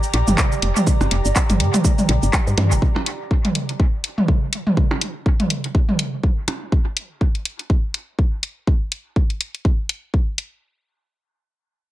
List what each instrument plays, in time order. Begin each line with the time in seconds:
Already playing: analog synth pad G4 D5 A#5
0.03 shaker
0.14 fm bass A#1, closed hi-hat
0.28 fm bass G1, high tom, shaker
0.38 kick, clap, shaker
0.52 shaker
0.62 fm bass F1, closed hi-hat
0.76 high tom, shaker
0.87 kick, shaker
1.01 fm bass G1, percussion blips, shaker
1.11 fm bass F1, closed hi-hat
1.25 fm bass G1, shaker
1.36 kick, clap, shaker
1.50 fm bass G1, closed hi-hat, high tom, shaker
1.60 fm bass G2, closed hi-hat
1.74 closed hi-hat, high tom, shaker
1.84 kick, shaker
1.98 high tom, shaker
2.09 fm bass A#1, closed hi-hat
2.23 fm bass G1, shaker
2.33 kick, clap, shaker
2.47 fm bass G2, shaker
2.58 fm bass G2, closed hi-hat, high tom, percussion blips
2.72 fm bass G1, shaker
2.82 kick
2.96 percussion blips
3.06 closed hi-hat
3.31 kick
3.45 closed hi-hat, high tom
3.55 closed hi-hat
3.69 closed hi-hat
3.80 kick
4.04 closed hi-hat
4.18 high tom
4.28 kick
4.53 closed hi-hat
4.67 high tom
4.77 kick
4.91 percussion blips
5.01 closed hi-hat
5.26 kick
5.40 closed hi-hat, high tom
5.50 closed hi-hat
5.64 closed hi-hat
5.75 kick
5.89 high tom
5.99 closed hi-hat
6.23 kick
6.48 closed hi-hat, percussion blips
6.72 kick
6.97 closed hi-hat
7.21 kick
7.35 closed hi-hat
7.45 closed hi-hat
7.59 closed hi-hat
7.70 kick
7.94 closed hi-hat
8.19 kick
8.43 closed hi-hat
8.67 kick
8.92 closed hi-hat
9.16 kick
9.30 closed hi-hat
9.41 closed hi-hat
9.55 closed hi-hat
9.65 kick
9.89 closed hi-hat
10.14 kick
10.38 closed hi-hat